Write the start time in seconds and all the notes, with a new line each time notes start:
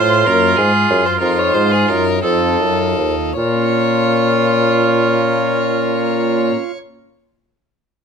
Already playing: A2 F4 C5
0.22 A#3 C#4
0.26 F#2 A#4
0.56 G#2 G#4
0.89 F#2
1.06 C5
1.16 C4 D#4 F4 A#4
1.21 F2 F4
1.39 C#5
1.53 G#2 C5
1.71 G#4
1.88 F#2 A#4
2.19 C4 D#4 F4 A4
2.23 F2 A4
2.60 F#2
2.98 D#2
3.36 A#2 F4 C#5
3.43 A#3
3.50 C#4
3.57 F4
3.64 C#5